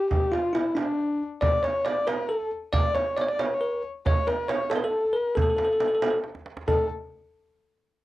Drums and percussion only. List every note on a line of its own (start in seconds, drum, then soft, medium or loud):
0.11 frame drum medium
0.11 tombak dum medium
0.33 tombak tek medium
0.33 frame drum medium
0.44 tombak ka soft
0.55 tombak tek medium
0.55 frame drum medium
0.77 tombak tek medium
0.77 frame drum medium
0.99 tombak ka soft
1.09 tombak ka soft
1.21 tombak ka soft
1.42 frame drum medium
1.42 tombak dum medium
1.64 tombak tek medium
1.64 frame drum medium
1.75 tombak ka soft
1.86 tombak tek medium
1.86 frame drum medium
2.07 tombak tek medium
2.07 frame drum medium
2.41 tombak ka soft
2.52 tombak ka soft
2.73 tombak dum medium
2.73 frame drum medium
2.95 tombak tek medium
2.95 frame drum medium
3.06 tombak ka soft
3.17 tombak tek medium
3.17 frame drum medium
3.39 tombak tek medium
3.39 frame drum medium
3.73 tombak ka soft
3.84 tombak ka soft
4.06 frame drum medium
4.06 tombak dum medium
4.28 tombak tek medium
4.28 frame drum medium
4.39 tombak ka soft
4.49 tombak tek medium
4.49 frame drum medium
4.71 tombak tek medium
4.71 frame drum medium
5.05 tombak ka soft
5.15 tombak ka soft
5.37 frame drum medium
5.37 tombak dum medium
5.58 tombak tek medium
5.58 frame drum medium
5.70 tombak ka soft
5.80 tombak tek medium
5.80 frame drum medium
6.02 tombak tek medium
6.02 frame drum medium
6.24 tombak tek medium
6.35 tombak ka medium
6.46 tombak tek medium
6.57 tombak ka medium
6.68 frame drum medium
6.68 tombak dum medium